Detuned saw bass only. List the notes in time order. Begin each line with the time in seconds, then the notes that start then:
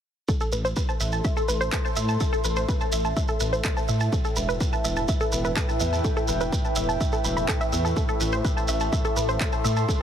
0.52 A1
1.00 A1
1.49 A1
1.97 A2
2.44 A1
2.93 A1
3.41 A1
3.89 A2
4.37 E1
4.85 E1
5.32 E1
5.81 E2
6.29 E1
6.76 E1
7.25 E1
7.73 E2
8.21 A1
8.69 A1
9.16 A1
9.65 A2